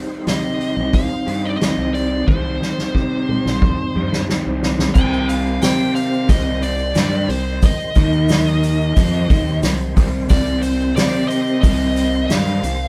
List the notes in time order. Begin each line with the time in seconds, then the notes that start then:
Already playing: C3 D#3 G3 C4 D#4 G4 C5
0.27 C3 D#5, snare, open hi-hat
0.61 open hi-hat
0.77 C2
0.93 F5, kick, open hi-hat
1.26 G2 C3 D#3 G3 C4 G4, open hi-hat
1.45 D#5
1.50 D5
1.57 C3 D#3 G3 D#5
1.61 C4 G4, snare, open hi-hat
1.78 C2
1.94 D5, open hi-hat
2.27 C2 C3 D#3 G3 C4 G4 C5, kick, high tom
2.62 snare
2.78 snare
2.95 C3, kick
3.29 mid tom
3.45 C2, snare
3.62 kick, mid tom
3.95 G2 C3 D#3 G3 C4 G4, mid tom
4.13 snare
4.28 C3 D#3 G3 C4 G4, snare
4.47 C2
4.63 snare
4.79 snare
4.93 C2 C3 D#3 G3 C4 C5 G5, kick, crash, shaker
5.13 shaker
5.29 F5, open hi-hat, shaker
5.46 shaker
5.62 C3 C4 G4 C5 G5, snare, open hi-hat, shaker
5.79 shaker
5.95 F5, open hi-hat, shaker
6.13 shaker
6.28 C2 C3 G3 C4 D#5, kick, open hi-hat, shaker
6.62 D5, open hi-hat, shaker
6.79 shaker
6.94 G2 G3 D4 G4, snare, open hi-hat, shaker
7.11 shaker
7.28 C2 C3 G3 C5, open hi-hat
7.62 D#5, kick, open hi-hat, shaker
7.79 shaker
7.95 D#2 D#3 A#3 D#4 A#4 D#5, kick, open hi-hat, shaker
8.12 shaker
8.29 snare, open hi-hat, shaker
8.47 shaker
8.63 open hi-hat, shaker
8.80 shaker
8.95 F2 D#3 F3 G3 C4 F4 C5, kick, open hi-hat, shaker
9.29 D#2 D#3 A#3 D#4, kick, open hi-hat, shaker
9.47 shaker
9.63 C2 C3 G3, snare, open hi-hat, shaker
9.80 shaker
9.96 C2 C3 G3 C4, kick, open hi-hat, shaker
10.29 C2 C3 G3 C4 D5, kick, open hi-hat, shaker
10.47 shaker
10.62 C5, open hi-hat, shaker
10.80 shaker
10.95 C3 C4 G4 C5 D5, snare, open hi-hat, shaker
11.14 shaker
11.28 D#5, open hi-hat, shaker
11.47 shaker
11.61 C2 C3 G3 C4 D#5, kick, open hi-hat, shaker
11.96 open hi-hat, shaker
12.13 shaker
12.27 G2 G3 D4 G4 F5, snare, open hi-hat, shaker
12.47 shaker
12.62 C2 C3 G3, open hi-hat, shaker